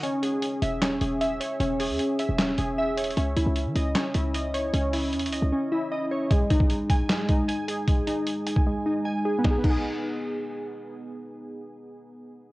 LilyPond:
<<
  \new Staff \with { instrumentName = "Synth keys" } { \time 4/4 \key gis \minor \tempo 4 = 153 cis'8 gis'4 e''8 cis'8 gis'8 e''8 cis''8 | cis'8 gis'4 e''8 cis'8 gis'8 e''8 cis''8 | cis'8 e'4 dis''8 cis'8 e'8 dis''8 cis''8 | cis'8 e'4 dis''8 cis'8 e'8 dis''8 cis''8 |
gis8 dis'4 gis''8 gis8 dis'8 gis''8 gis'8 | gis8 dis'4 gis''8 gis8 dis'8 gis''8 gis'8 | <b dis' gis'>8 <b dis' gis'>2.~ <b dis' gis'>8~ | <b dis' gis'>1 | }
  \new Staff \with { instrumentName = "808-style bass" } { \clef bass \time 4/4 \key gis \minor r4. e,,4 e,,4 r8 | e,,8. e,16 r8. e,,8. e,,4. | cis,8 cis,16 cis,8 e16 cis,8 r8 cis,4. | cis,4 e,16. cis,16. cis,16 r2 |
r1 | r1 | r1 | r1 | }
  \new DrumStaff \with { instrumentName = "Drums" } \drummode { \time 4/4 hh8 hh8 hh8 hh8 <hc hh sn>8 hh8 hh8 hh8 | hh8 hho8 hh8 hh8 <hc hh sn>8 hh8 \tuplet 3/2 { r16 r16 r16 hh16 hh16 hh16 } | hh8 hh8 hh8 hh8 <hc hh sn>8 hh8 hh8 hh8 | hh8 hho8 \tuplet 3/2 { hh16 hh16 hh16 hh16 r16 r16 } r4 r4 |
<hh bd>8 <hh bd>16 bd16 hh8 <hh bd>8 <hc hh sn>8 <hh bd>8 hh8 hh8 | <hh bd>8 hh8 hh8 hh16 bd16 r4 r4 | <bd sn>8 <cymc bd>8 r4 r4 r4 | r4 r4 r4 r4 | }
>>